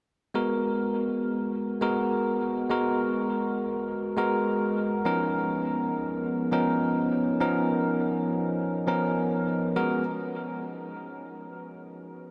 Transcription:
0.34 G#3 B3 F#4 A#4
1.81 G#3 B3 F#4 A#4
2.70 G#3 B3 F#4 A#4
4.17 G#3 B3 F#4 A#4
5.05 F3 B3 C#4 D#4 A#4
6.52 F3 B3 C#4 D#4 A#4
7.40 F3 B3 C#4 D#4 A#4
8.87 F3 B3 C#4 D#4 A#4
9.76 G#3 B3 F#4 A#4

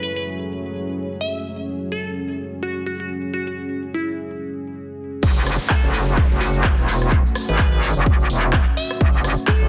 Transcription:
Already playing: F#3 A3 C#4 E4 G#4 C#5
0.03 B4
0.16 B4
1.21 E5
1.92 A4
2.63 F#4
2.86 F#4
3.00 F#4
3.34 F#4
3.47 F#4
3.94 E4
5.23 F#1 A3 C#4 F#4, kick, crash, downlifter, shaker
5.37 shaker
5.47 cross-stick, open hi-hat, shaker
5.60 shaker
5.70 A4, kick, clap, shaker
5.83 F#1, shaker
5.94 open hi-hat, shaker
6.08 shaker
6.17 kick, shaker
6.31 F#1, shaker
6.41 F#4, open hi-hat, shaker
6.54 shaker
6.64 kick, clap, shaker
6.78 E1, shaker
6.88 open hi-hat, shaker
7.02 cross-stick, shaker
7.11 kick, shaker
7.26 shaker
7.35 cross-stick, open hi-hat, shaker
7.49 G#1 B4, shaker
7.58 B4, kick, clap, shaker
7.72 B4, shaker
7.82 open hi-hat, shaker
7.95 F#1, shaker
8.06 kick, shaker
8.20 shaker
8.29 E1, open hi-hat, shaker
8.43 shaker
8.53 kick, clap, shaker
8.67 shaker
8.77 E5, open hi-hat, shaker
8.90 cross-stick, shaker
9.01 F#1, kick, shaker
9.15 shaker
9.24 cross-stick, open hi-hat, shaker
9.38 shaker
9.47 A4, kick, clap, shaker
9.61 F#1, shaker

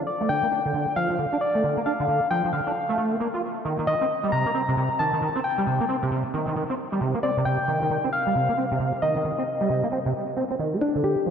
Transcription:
0.07 D5
0.21 A3
0.29 D3 G5
0.43 A#3
0.51 D4
0.65 D3
0.74 D3
0.96 F3 F5
1.10 F3
1.19 D3
1.33 D4
1.41 D5
1.55 A3
1.63 D3
1.77 A#3
1.86 D4 F5
2.00 D3
2.08 D3
2.31 F3 G5
2.44 F3
2.53 D3 F5
2.67 D4
2.89 A3
2.98 A3
3.12 A#3
3.20 A#3
3.34 F4
3.65 D#3
3.79 D#3
3.87 D#3 D#5
4.01 C4
4.24 G3
4.32 C3 A#5
4.46 A#3
4.54 C4
4.68 C3
4.77 C3
4.99 D#3 A5
5.13 D#3
5.22 D#3
5.35 C4
5.44 G5
5.58 G3
5.66 C3
5.80 A#3
5.89 C4
6.03 C3
6.11 C3
6.34 D#3
6.47 D#3
6.56 D#3
6.70 C4
6.92 G3
7.01 C3
7.15 A#3
7.23 C4 D5
7.37 C3
7.45 C3 G5
7.68 D#3
7.82 D#3
7.90 D#3
8.04 C4
8.13 F5
8.26 G3
8.35 C3
8.49 A#3
8.57 C4
8.71 C3
8.80 C3
9.02 D#3 D#5
9.16 D#3
9.24 D#3
9.38 C4
9.61 G3
9.69 C3
9.83 A#3
9.92 C4
10.06 C3
10.37 C4
10.50 C4
10.59 D#3
10.73 A#3
10.81 D4
10.95 D3
11.04 D3 G4
11.26 F3

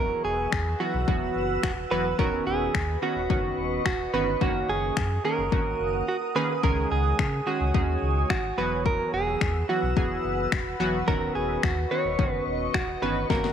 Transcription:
Already playing: E1 E3 F#3 B3 F#4 A#4 B4 F#5 E6
0.25 E1 G#4
0.52 E2, finger snap, kick
0.80 E3 F#3 B3 F#4
0.94 B1
1.08 E1 E3 F#3 B3 F#4, kick
1.36 F#1
1.63 E1 F#4, finger snap, kick
1.91 E1 E3 F#3 B3 F#4 B4
2.19 D#1 D#3 B3 C#4 F#4 A#4 B4 D#5 C#6, kick
2.47 D#1 G#4
2.75 D#2, finger snap, kick
3.02 D#3 B3 C#4 F#4
3.16 D#1
3.30 F#1 D#3 B3 C#4 F#4, kick
3.58 D#1
3.86 D#1 F#4, finger snap, kick
4.13 G1 D#3 B3 C#4 F#4 B4
4.41 F#1 D#3 A#3 C#4 F#4 A#4 F#5 D#6, kick
4.69 F#1 G#4
4.97 F#2, finger snap, kick
5.24 D#3 A#3 C#4 G#4 A#4
5.38 F#1
5.52 G#1 D#3 A#3 C#4 F#4, kick
5.80 F#1
6.08 F#4
6.35 D#3 A#3 C#4 G#4 B4
6.63 C#2 D#3 G#3 C#4 G#4 A#4 C#5 G#5, kick
6.91 C#2 G#4
7.19 C#3, finger snap, kick
7.46 D#3 G#3 C#4 F#4 G#4
7.61 C#2
7.74 D#2 D#3 G#3 C#4 G#4, kick
8.02 C#2
8.30 G#1 F#4, finger snap, kick
8.57 E1 E3 F#3 B3 F#4 B4 F#5 E6
8.86 A#4, kick
9.13 E1 G#4
9.41 E2, finger snap, kick
9.69 E3 F#3 B3 F#4
9.83 B1
9.96 E1 E3 F#3 B3 G#4, kick
10.24 F#1
10.52 E1, finger snap, kick
10.80 E1 E3 F#3 B3 F#4
11.08 D#1 D#3 B3 C#4 F#4 A#4 D#5 C#6, kick
11.35 D#1 G#4
11.63 D#2 F#4, finger snap, kick
11.91 D#3 B3 C#4 F#4 C#5
12.05 D#1
12.19 F#1 D#3 B3 C#4 F#4, kick
12.47 D#1
12.74 D#1 F#4, finger snap, kick
13.02 G1 D#3 B3 C#4 F#4 B4
13.30 F#1 D#3 A#3 C#4 F#4 A#4, kick, snare
13.44 snare

